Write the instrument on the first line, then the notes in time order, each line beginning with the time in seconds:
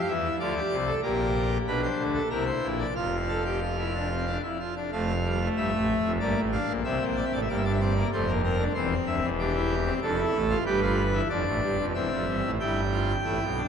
pipe organ
Already playing: G4
0.00 F5
0.08 E2 E3 E5
0.25 E4
0.40 D2 D3 F4 D5
0.57 G4
0.71 C2 C3
0.87 A4
1.02 A#1 A#2 G4 A#4
1.67 B1 B2 D4 B4
1.83 C5
1.99 D2 D3
2.14 A4
2.30 C2 C3 E4 A#4
2.46 C5
2.62 A#1 A#2
2.79 D5
2.95 F1 F2 F4 F5
3.29 A4
3.45 G4
3.62 F4
3.78 E4
3.94 D4
4.11 C4
4.27 D4
4.43 E4
4.60 F4
4.76 D4
4.92 F1 F2 A3 F5
5.25 G3
5.41 A3
5.57 G1 G2 E5
5.73 A1 A2
6.04 F1 F2
6.20 G1 G2 A#3 D5
6.36 A1 A2
6.52 D4 F5
6.69 A#1 A#2
6.84 C2 C3 C4 E5
7.00 A#1 A#2
7.17 D5
7.25 E5
7.32 A1 A2 D5
7.41 E5
7.49 G1 G2 A#3 D5
7.57 E5
7.65 D4 D5
7.73 E5
7.80 C4 D5
7.96 A#3
8.12 F1 F2 A3 C5
8.28 A#3
8.44 C4 A#4
8.59 D4
8.74 E1 E2 C4 C5
9.06 D1 D2 E5
9.22 E1 E2
9.39 D4 G4
9.55 E4
9.86 C4
10.02 F1 F2 D4 A4
10.18 E4
10.34 A1 A2
10.50 F4
10.66 G1 G2 G4 B4
10.82 F4
11.13 E4
11.29 F1 F2 D4 D5
11.46 A1 A2
11.63 G1 G2
11.79 F1 F2
11.94 E1 E2 C4 E5
12.11 F1 F2
12.27 G1 G2
12.44 A1 A2
12.60 G1 G2 E4 G5
12.92 F4
13.24 A1 A2 E4
13.42 B1 B2
13.57 D4